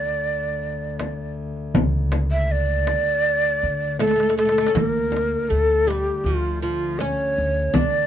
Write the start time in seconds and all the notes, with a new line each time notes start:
Already playing: D2 D5
0.07 darbuka ka
0.45 darbuka ka
0.64 darbuka ka
1.00 darbuka tek, frame drum
1.57 darbuka ka
1.75 C#2, darbuka dum, frame drum
2.12 darbuka tek, frame drum
2.31 E5
2.49 D5, darbuka ka
2.87 darbuka tek, frame drum
3.07 darbuka ka
3.45 darbuka ka
3.63 D3
3.82 darbuka ka
3.99 A3 A4, darbuka tek, frame drum
4.07 A3, darbuka ka
4.16 A3
4.20 A3, darbuka tek
4.29 A3, darbuka ka
4.37 A3 A4, darbuka tek
4.45 A3, darbuka ka
4.52 A3
4.58 A3, darbuka tek
4.67 C#4, darbuka ka
4.75 D2 A#3 A#4, frame drum, darbuka dum
4.97 darbuka ka
5.12 frame drum
5.17 darbuka tek
5.49 D2 A3 A4
5.87 G3 G4, darbuka tek, frame drum
6.09 darbuka ka
6.24 D2 F3 F4
6.62 F3 F4
6.99 C#4 C#5, darbuka tek, frame drum
7.19 darbuka ka
7.38 D2
7.74 D2 D4 D5, frame drum, darbuka dum
7.93 darbuka ka